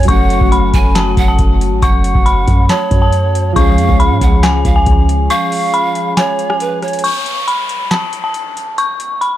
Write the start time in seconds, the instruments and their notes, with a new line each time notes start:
0.03 synth keys F#3, closed hi-hat
0.08 808-style bass F#1, synth keys A3 C#4, pan flute F#5, synth bell C#6, kick, closed hi-hat
0.13 synth keys F#4
0.30 closed hi-hat
0.41 808-style bass F#1, kick
0.52 synth bell B5, closed hi-hat
0.74 808-style bass F#1, pan flute G#5, kick, closed hi-hat
0.95 synth bell A5, snare, clap, closed hi-hat
1.17 808-style bass F#1, pan flute F#5, kick, closed hi-hat
1.28 synth bell A5
1.39 808-style bass F#1, kick, closed hi-hat
1.61 closed hi-hat
1.72 808-style bass G#1
1.82 808-style bass F#1, pan flute F#5, synth bell C#6, kick, closed hi-hat
2.04 closed hi-hat
2.15 808-style bass F#1, kick
2.26 synth bell B5, closed hi-hat
2.48 808-style bass F#2, kick, closed hi-hat
2.69 pan flute C#5, synth bell A5, snare, clap, closed hi-hat
2.91 808-style bass F#2, kick, closed hi-hat
3.02 synth bell A5
3.13 closed hi-hat
3.35 closed hi-hat
3.53 808-style bass C#2, synth keys F3 G#3, pan flute F5, synth bell C#6, kick, closed hi-hat
3.58 synth keys C#4 G#4
3.78 808-style bass F2, closed hi-hat
3.89 808-style bass C#2, kick
4.00 synth bell B5, closed hi-hat
4.11 808-style bass G#2
4.21 808-style bass C#2, pan flute F#5, kick, closed hi-hat
4.43 synth bell G#5, snare, clap, closed hi-hat
4.65 808-style bass C#2, pan flute F5, kick, closed hi-hat
4.76 synth bell G#5
4.86 808-style bass C#2, kick, closed hi-hat
5.09 closed hi-hat
5.30 pan flute F5, synth bell C#6, closed hi-hat
5.52 open hi-hat
5.74 synth bell B5, closed hi-hat
5.95 closed hi-hat
6.17 pan flute C#5, synth bell G#5, snare, clap, closed hi-hat
6.39 closed hi-hat
6.50 synth bell G#5, cross-stick
6.60 pan flute B4, closed hi-hat
6.82 pan flute C#5, cross-stick, closed hi-hat
6.88 closed hi-hat
6.93 closed hi-hat
6.99 closed hi-hat
7.04 synth bell C#6, closed hi-hat, crash, downlifter
7.26 closed hi-hat
7.48 synth bell B5, closed hi-hat
7.69 closed hi-hat
7.91 synth bell A5, snare, clap, closed hi-hat
8.13 closed hi-hat
8.24 synth bell A5
8.34 closed hi-hat
8.57 closed hi-hat
8.78 synth bell C#6, closed hi-hat
9.00 closed hi-hat
9.21 synth bell B5, closed hi-hat